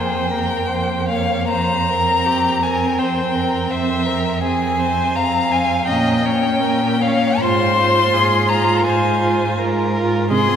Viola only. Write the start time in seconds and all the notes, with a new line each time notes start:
Already playing: A#3
0.31 A#3
1.07 A#3
1.88 C4
2.63 C4
3.35 C4
4.08 C4
4.43 C4
4.79 C4
5.52 C4
5.88 C#4
6.25 C#4
7.03 C#4
7.42 F4
7.79 F4
8.50 F4
9.22 F4
9.94 F4
10.30 G#3
10.48 C4